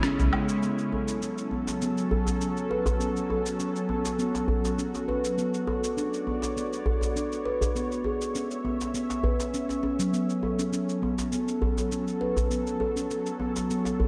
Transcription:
Already playing: C#3 G#3 C#4 E4
0.03 C#4, cross-stick, cabasa
0.19 B1, djembe slap, cabasa
0.33 G#3, djembe slap, djembe tone, low woodblock
0.49 cabasa
0.62 F#3 B3 C#4 A4, cabasa
0.78 cabasa
0.92 A4, djembe tone
1.08 cabasa
1.22 C#4, cabasa
1.38 cabasa
1.51 B3, djembe tone
1.67 djembe slap, cabasa
1.82 B3, cabasa
1.98 cabasa
2.11 A4, djembe bass
2.26 djembe tone, cabasa
2.41 C#4, cabasa
2.57 cabasa
2.70 B4, djembe slap
2.86 djembe tone, djembe bass, cabasa
3.00 B3 F#4, cabasa
3.16 cabasa
3.30 A4, djembe tone
3.46 cabasa
3.60 C#4, cabasa
3.76 cabasa
3.89 B3, djembe tone
4.05 djembe slap, cabasa
4.19 B3, cabasa
4.35 djembe slap, cabasa
4.48 A4, djembe bass
4.65 djembe slap, cabasa
4.78 C#4, cabasa
4.95 djembe slap, cabasa
5.08 B4, djembe slap, djembe tone
5.25 cabasa
5.38 B3 C#5 D5, cabasa
5.54 cabasa
5.67 A4, djembe tone
5.84 cabasa
5.97 D4, cabasa
6.14 cabasa
6.27 B3, djembe tone
6.42 djembe slap, cabasa
6.57 B3, cabasa
6.73 cabasa
6.86 A4, djembe bass
7.01 djembe tone, cabasa
7.16 D4, cabasa
7.32 cabasa
7.45 B4, djembe slap
7.61 djembe tone, djembe bass, cabasa
7.75 B3 C#4 E5, cabasa
7.92 cabasa
8.04 G#4, djembe tone
8.21 cabasa
8.35 C#4, cabasa
8.51 cabasa
8.65 B3, djembe tone
8.81 djembe slap, cabasa
8.94 B3, cabasa
9.10 djembe slap, cabasa
9.23 B4, djembe bass
9.40 djembe slap, cabasa
9.54 C#4, cabasa
9.69 djembe slap, cabasa
9.83 C#4, djembe slap, djembe tone
9.99 F#3, cabasa
10.13 F#3 B3 A4, cabasa
10.29 cabasa
10.43 A4, djembe tone
10.59 C#4, cabasa
10.72 C#4, cabasa
10.89 cabasa
11.02 B3, djembe tone
11.18 djembe slap, cabasa
11.32 B3, cabasa
11.48 cabasa
11.62 A4, djembe bass
11.77 djembe tone, cabasa
11.91 C#4, cabasa
12.08 cabasa
12.21 B4, djembe slap
12.36 djembe tone, djembe bass, cabasa
12.51 B3, cabasa
12.67 cabasa
12.80 A4, djembe tone
12.96 C#4, cabasa
13.10 C#4, cabasa
13.26 cabasa
13.40 B3, djembe tone
13.56 djembe slap, cabasa
13.70 B3, cabasa
13.85 djembe slap, cabasa
14.00 A4, djembe bass

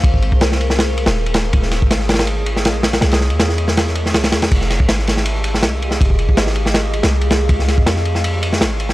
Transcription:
Already playing: G#4 A#4 C5 F5
0.04 G#1, kick, ride
0.14 kick
0.22 ride
0.32 C2, kick
0.41 snare, ride
0.52 snare
0.61 ride
0.70 snare
0.79 snare, ride
0.97 ride
1.06 D#1, snare, ride
1.26 ride
1.34 snare, ride
1.53 D#1 C#5 D#5 F5, kick, ride
1.63 snare
1.71 snare, ride
1.82 G#1, kick
1.91 snare, ride
1.99 snare
2.09 snare, ride
2.14 snare, ride
2.19 snare, ride
2.27 ride
2.46 ride
2.57 snare
2.65 A#1, snare, ride
2.83 snare, ride
2.93 snare, ride
3.01 C2 A#4 E5, snare, ride
3.12 snare, ride
3.21 snare
3.30 E2, ride
3.40 snare, ride
3.49 snare
3.58 ride
3.68 snare
3.77 snare, ride
3.87 snare
3.95 ride
4.06 snare
4.14 C2, snare, ride
4.24 snare, ride
4.32 E2, snare, ride
4.42 snare, ride
4.51 F1 G4 G#4 D#5 F5, kick, crash, ride
4.61 snare
4.70 snare, ride
4.80 G#1, kick
4.89 snare, ride
4.99 snare
5.07 snare, ride
5.17 snare
5.25 ride
5.44 ride
5.54 snare
5.63 C2, snare, ride
5.82 ride
5.91 snare
6.01 F1, kick, ride
6.10 kick
6.19 ride
6.29 G#1, kick
6.37 snare, ride
6.47 snare
6.56 ride
6.66 snare
6.74 snare, ride
6.93 ride
7.03 C2, snare, ride
7.21 ride
7.31 snare, ride
7.49 C#2 G#4 C5 C#5, kick, ride
7.59 snare
7.68 snare, ride
7.78 F2, kick
7.86 snare, ride
7.96 snare
8.05 ride
8.15 snare
8.24 ride
8.43 ride
8.53 snare
8.61 G#1, snare, ride
8.80 ride
8.89 snare

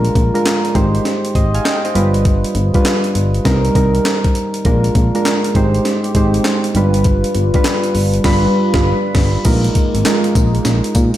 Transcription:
Already playing: G#3 D4 F4 A#4
0.05 closed hi-hat
0.15 A#1, kick, closed hi-hat
0.34 G#3 D4 F4 A#4, closed hi-hat
0.46 snare, clap, closed hi-hat
0.65 closed hi-hat
0.75 G#1 G#3 D#4 G4 C5, kick, closed hi-hat
0.95 closed hi-hat
1.05 snare, closed hi-hat
1.25 closed hi-hat
1.35 G#1 C5 D#5, kick, closed hi-hat
1.54 F5 G#5, closed hi-hat
1.65 D#5 G5, snare, clap, closed hi-hat
1.84 C5 D#5, closed hi-hat
1.95 G1 G3 D4 F4 B4, closed hi-hat
2.14 closed hi-hat
2.25 kick, closed hi-hat
2.44 closed hi-hat
2.55 G1, closed hi-hat
2.74 G3 D4 F4 B4, kick, closed hi-hat
2.85 snare, clap, closed hi-hat
3.04 closed hi-hat
3.15 G1, closed hi-hat
3.34 closed hi-hat
3.45 C2 G3 C4 D#4 A#4, kick, snare, closed hi-hat
3.65 closed hi-hat
3.75 C2 G3 C4 D#4 A#4, kick, closed hi-hat
3.95 closed hi-hat
4.05 snare, clap, closed hi-hat
4.24 kick, closed hi-hat
4.35 closed hi-hat
4.54 closed hi-hat
4.65 A#1 G#3 A#3 D4 F4 A#4, kick, closed hi-hat
4.84 closed hi-hat
4.95 A#1, kick, closed hi-hat
5.15 G#3 D4 F4 A#4, closed hi-hat
5.25 snare, clap, closed hi-hat
5.44 closed hi-hat
5.55 G#1 G#3 C4 D#4 G4 C5, kick, closed hi-hat
5.74 closed hi-hat
5.85 snare, closed hi-hat
6.04 closed hi-hat
6.15 G#1 G#3 D#4 G4 C5, kick, closed hi-hat
6.34 closed hi-hat
6.44 snare, clap, closed hi-hat
6.64 closed hi-hat
6.75 G1 G3 D4 F4 B4, closed hi-hat
6.94 closed hi-hat
7.04 kick, closed hi-hat
7.24 closed hi-hat
7.35 G1, closed hi-hat
7.54 G3 D4 F4 B4, kick, closed hi-hat
7.64 snare, clap, closed hi-hat
7.84 closed hi-hat
7.95 G1, open hi-hat
8.14 closed hi-hat
8.24 G1 G3 D4 F4 B4 B5, kick, snare, crash
8.74 G1 G3 D4 F4 B4 B5, kick, snare
9.15 G1, kick, snare, crash
9.45 A#1 G#3 A#3 D#4 F4 A#4, kick, closed hi-hat, crash, tambourine
9.64 closed hi-hat
9.75 kick, closed hi-hat
9.95 G#1, closed hi-hat
10.05 G#3 D#4 F4 A#4, snare, clap, closed hi-hat, tambourine
10.24 closed hi-hat
10.35 A#1, kick, closed hi-hat, tambourine
10.55 closed hi-hat
10.65 A#1, snare, closed hi-hat, tambourine
10.84 closed hi-hat
10.95 A#2, kick, closed hi-hat, tambourine
11.14 closed hi-hat

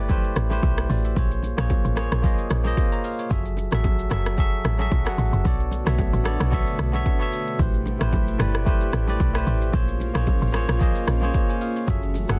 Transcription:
Already playing: G1 A3 E4 G4 B4 C5 D5
0.08 A3 E4 G4 B4 C5, kick, low conga, shaker
0.24 shaker
0.36 A1, cross-stick, high bongo, shaker
0.49 A3 E4 G4 B4 C5, low bongo, shaker
0.63 B1 E4 C5, kick, high bongo, shaker
0.78 cross-stick, shaker
0.90 A1 F#4 D5, open hi-hat, shaker
1.04 G4 E5, shaker
1.15 A#1 A#3 F4 G#4 C5 C#5, kick, low conga, shaker
1.31 shaker
1.43 low bongo, shaker
1.57 A#1 A#3 F4 G#4 C5 C#5, cross-stick, shaker
1.70 kick, high bongo, low bongo, low conga, shaker
1.85 A1, shaker
1.95 A#3 F4 G#4 C5 C#5, cross-stick, low bongo, shaker
2.12 A#1, cross-stick, shaker
2.22 A#3 F4 G#4 C5 D#5, kick, low conga, shaker
2.38 shaker
2.50 A#1, cross-stick, high bongo, shaker
2.64 A#3 F4 G#4 C5 D#5, low bongo, shaker
2.77 kick, high bongo, shaker
2.92 C#5 A#5, shaker
3.04 G#4 F5, open hi-hat, shaker
3.19 F4 C#5, shaker
3.29 F#1 F#3 F#4 G#4 A4 E5, kick, low conga, shaker
3.45 shaker
3.57 low bongo, shaker
3.71 A1 F#3 F#4 G#4 A4 E5, cross-stick, shaker
3.84 kick, high bongo, low bongo, low conga, shaker
3.99 shaker
4.10 F#1 F#3 F#4 G#4 A4 E5, cross-stick, low bongo, shaker
4.26 cross-stick, shaker
4.37 F#3 F#4 G#4 A4 E5, kick, low conga, shaker
4.64 A1, cross-stick, high bongo, shaker
4.78 F#3 F#4 G#4 A4 E5, low bongo, shaker
4.91 B1, kick, high bongo, shaker
5.05 F#3 F#4 G#4 A4 F#5, cross-stick, shaker
5.18 A1, open hi-hat, shaker
5.33 F#1, shaker
5.44 B1 B2 D3 A3 B3 D4 F#4 A4 C#5 D5, kick, low conga, shaker
5.60 shaker
5.71 low bongo, shaker
5.85 B1 B3 F#4 A4 C#5 E5, cross-stick, shaker
5.98 kick, high bongo, low bongo, low conga, shaker
6.13 A1, shaker
6.24 B3 F#4 A4 C#5 D5, cross-stick, low bongo, shaker
6.40 B1, cross-stick, shaker
6.51 B3 F#4 A4 C#5 E5, kick, low conga, shaker
6.67 shaker
6.79 B1, cross-stick, high bongo, shaker
6.92 B3 F#4 A4 C#5 E5, low bongo, shaker
7.06 kick, high bongo, shaker
7.19 B3 F#4 A4 C#5 E5, shaker
7.33 open hi-hat, shaker
7.47 shaker
7.58 A1 A3 E4 G4 B4 C5, kick, low conga, shaker
7.74 shaker
7.86 low bongo, shaker
7.99 A1 A3 E4 G4 B4 C5, cross-stick, shaker
8.13 kick, high bongo, low bongo, low conga, shaker
8.28 shaker
8.38 G1 A3 E4 G4 B4 D5, cross-stick, low bongo, shaker
8.55 cross-stick, shaker
8.65 A3 E4 G4 B4 C5, kick, low conga, shaker
8.81 shaker
8.93 A1, cross-stick, high bongo, shaker
9.07 A3 E4 G4 B4 D5, low bongo, shaker
9.20 B1, kick, high bongo, shaker
9.34 A3 E4 G4 B4 C5, cross-stick, shaker
9.47 A1, open hi-hat, shaker
9.62 shaker
9.72 A#1 A#3 C#4 F4 G#4 C5 C#5, kick, low conga, shaker
9.88 shaker
10.00 low bongo, shaker
10.14 A#1 A#3 F4 G#4 C5 C#5, cross-stick, shaker
10.27 kick, high bongo, low bongo, low conga, shaker
10.42 A1, shaker
10.53 A#3 F4 G#4 C5 C#5, cross-stick, low bongo, shaker
10.69 A#1, cross-stick, shaker
10.79 A#3 F4 G#4 C5 D#5, kick, low conga, shaker
10.95 shaker
11.07 A#1, cross-stick, high bongo, shaker
11.21 A#3 F4 G#4 C5 C#5, low bongo, shaker
11.34 kick, high bongo, shaker
11.49 C5 G#5, shaker
11.61 G#4 F5, open hi-hat, shaker
11.76 F4 C#5, shaker
11.87 F#1 E3 F#3 A3 F#4 G#4 A4 E5, kick, low conga, shaker
12.02 shaker
12.14 low bongo, shaker
12.28 F#1 F#3 F#4 G#4 A4 F#5, cross-stick, shaker

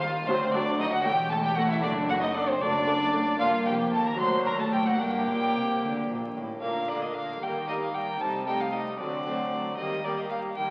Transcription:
Already playing: D#2 C4 G4
0.01 G3 F4 F5
0.23 A3 F#4
0.28 D2 F#3 C4 C5
0.54 F#3 D4 D5
0.79 F#3 D#4 D#5
0.93 F#4 F#5
1.01 A3 C#4 E4 G5
1.05 E1 E2 A3 G4 G5
1.31 A3 A4 A5
1.43 G4 G5
1.55 A3 F#4 F#5
1.69 E4 E5
1.78 A3 D4
1.83 F#1 F#2 A3 D5
2.08 A3 F#4 F#5
2.21 D#4 D#5
2.34 A3 D4 D5
2.48 C4 C5
2.59 F#1 F#2 A3 D4 D5
2.87 A3
3.14 A3
3.36 G2 A#3 D4 F4
3.40 G1 G2 F5
3.66 F1 F2 G4 G5
3.92 D#2 A4 A5
4.05 A#4 A#5
4.16 A3 D4 F#4
4.20 D2 F#3 C5 C6
4.45 D#2 A#4 A#5
4.58 A3 A4 A5
4.72 F#1 F#2 G4 G5
4.86 F#4 F#5
4.95 A#3 D4 G4
4.99 G1 G2 A#3 G5
5.26 A#1 A#2
5.54 C2 C3
5.81 D2 D3
6.08 A#1 A#2
6.35 A1 A2
6.60 A#2 D3 A#3 A#4 F5
6.88 D3 A#3 D4 F4 A#4 D5
7.02 D#5
7.14 D3 A#3 A#4 F5
7.40 D#3 G3 A#3 A#4 G5
7.67 G3 A#3 D#4 A#4 D#5
7.82 F5
7.93 G3 A#3 A#4 G5
8.20 C3 G3 D#4 A4 A5
8.46 G3 A3 D#4 G4 A4 G5
8.60 F5
8.72 G3 D#4 A4 D#5
8.99 D3 F#3 C4 A4 D5
9.24 F#3 A3 C4 F#4 A4
9.51 F#3 C4 A4
9.77 D#3 G3 A#3 G4 D#5
10.04 G3 A#3 G4 D5
10.18 D#5
10.29 G3 A#3 G4 F5
10.55 D#3 G3 A#3 G4 G5

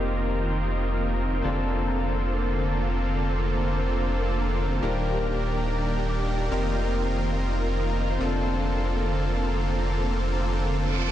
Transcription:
Already playing: F1 D#3 A#3 C4 D#4 F4 G4 A#4 C5 D#5 F5 G5 D#6
0.08 A#4
0.18 D#6
0.29 A#5
0.39 D#5
0.50 C5
0.60 D#5
0.71 D#5
0.81 C5
0.92 A#4
1.02 D#6
1.13 A#5
1.24 D#5
1.34 C5
1.43 F1 D3 A#3 C4 D4 F4 A4 C5 D6
1.56 C5
1.66 A#4
1.77 A4
1.87 A#5
1.98 F5
2.08 C5
2.19 A#4
2.29 C5
2.40 C5
2.50 A#4
2.61 A4
2.71 A#5
2.82 F5
2.92 C5
3.03 A#4
3.14 A4
3.25 C5
3.35 A#4
3.46 A4
3.56 A#5
3.67 F5
3.77 C5
3.88 A#4
3.98 C5
4.09 C5
4.19 A#4
4.30 A4
4.40 A#5
4.51 F5
4.62 C5
4.72 A#4
4.81 D#1 D#3 G3 A#3 D4 F4 G4 A#4 D5 G5
4.94 D5
5.04 A#4
5.15 G4
5.25 D6
5.36 G5
5.46 D5
5.57 A#4
5.67 D5
5.78 D5
5.88 D5
5.99 G4
6.09 D6
6.20 G5
6.31 D5
6.42 A#4
6.50 F1 D#3 A#3 C4 D#4 F4 G4 A#4 F5
6.63 D#5
6.73 C5
6.84 A#4
6.94 D#6
7.05 A#5
7.15 D#5
7.26 C5
7.36 D#5
7.47 D#5
7.57 D#5
7.68 A#4
7.78 D#6
7.89 A#5
8.00 D#5
8.11 C5
8.19 F1 D3 A#3 C4 D4 F4 A4 C5 D6
8.32 C5
8.42 A#4
8.53 A4
8.63 A#5
8.74 F5
8.84 C5
8.95 A#4
9.05 C5
9.16 C5
9.26 C5
9.37 A4
9.47 A#5
9.58 F5
9.68 C5
9.79 A#4
9.90 A4
10.01 C5
10.11 A#4
10.22 A4
10.32 A#5
10.43 F5
10.53 C5
10.64 A#4
10.74 C5, reverse cymbal
10.85 C5
10.95 C5
11.06 A4

